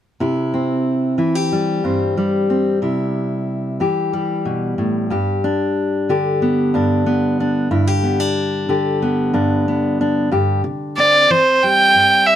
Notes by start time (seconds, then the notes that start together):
0.20 C3 E4
0.54 C4
1.18 E3 E4
1.35 G4
1.52 G3
1.84 G2 C4
2.17 G3
2.50 C4
2.82 C3 E4
3.80 E3 G4
4.13 G3
4.45 B2
4.78 A2
5.10 G2 G4
5.44 D4
6.09 D3 G4
6.42 B3
6.74 G2 D4
7.06 B3
7.40 D4
7.71 G2 E4
7.87 G4
8.04 B3
8.20 D4
8.69 D3 G4
9.02 B3
9.34 G2 D4
9.68 B3
10.01 D4
10.31 G2 G4
10.64 C3
10.97 C4 D5
11.30 E3 C5
11.63 G3 G5
11.95 G2
12.27 E5